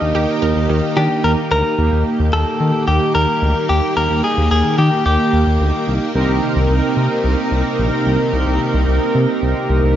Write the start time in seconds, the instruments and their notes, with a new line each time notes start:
Already playing: string machine D#3 D#4 G4, analog polysynth A#3 D#4 G4 A#4, synth arpeggio sound D4, clean electric guitar D#5
0.01 analog synth bass D#2
0.15 analog synth bass D#2, synth arpeggio sound G4
0.42 analog synth bass D#2, synth arpeggio sound A#4
0.56 analog synth bass D#2
0.69 analog synth bass D#2, synth arpeggio sound D#3
0.97 analog synth bass D#3, synth arpeggio sound D4, clean electric guitar G4
1.24 analog synth bass D#2, clean electric guitar A#4
1.51 analog synth bass D2, synth arpeggio sound A#4, clean electric guitar A#4
1.78 analog synth bass D#2, string machine D#3 A#3 G4, analog polysynth A#3 D#4 G4
1.92 analog synth bass D#2
2.19 analog synth bass D#2
2.33 analog synth bass D#2, clean electric guitar A4
2.60 analog synth bass D#3
2.88 analog synth bass D#2, clean electric guitar G4
3.15 analog synth bass D#2, clean electric guitar A#4
3.42 analog synth bass D2
3.69 analog synth bass D#2, clean electric guitar G4
3.97 analog synth bass D#2, clean electric guitar A#4
4.10 analog synth bass D#2
4.24 clean electric guitar G#4
4.38 analog synth bass D#2
4.51 analog synth bass D#2, clean electric guitar G#4
4.78 analog synth bass D#3, clean electric guitar G4
5.06 analog synth bass D#2, clean electric guitar G4
5.33 analog synth bass D#2
5.47 analog synth bass D#2
5.60 analog synth bass D2
5.88 analog synth bass C2
6.15 analog synth bass C2, string machine C3 D#4, analog polysynth C4 D#4 G4 A#4
6.29 analog synth bass C2
6.56 analog synth bass C2
6.69 analog synth bass C2
6.97 analog synth bass C3
7.24 analog synth bass C2
7.51 analog synth bass C2
7.78 analog synth bass A#1
8.06 analog synth bass C2
8.33 analog synth bass C2
8.47 analog synth bass C2
8.74 analog synth bass C2
8.88 analog synth bass C2
9.15 analog synth bass C3
9.42 analog synth bass C2
9.69 analog synth bass C2
9.83 analog synth bass C2